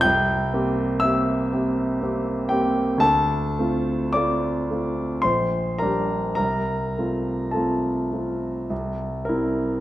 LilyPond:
\new Staff \with { instrumentName = "Grand piano" } { \time 3/4 \key c \mixolydian \tempo 4 = 54 << { <g'' g'''>4 <e'' e'''>4. <g' g''>8 | <a' a''>4 <d'' d'''>4 <c'' c'''>8 <bes' bes''>8 | <bes' bes''>4 <a' a''>4. bes'8 | } \\ { c,8 <bes c' g'>8 <bes c' g'>8 <bes c' g'>8 <bes c' g'>8 <bes c'>8 | d,8 <a c' f'>8 <a c' f'>8 <a c' f'>8 bes,,8 <g d' g'>8 | c,8 <a c' f'>8 <a c' f'>8 <a c' f'>8 c,8 <g c' e'>8 | } >> }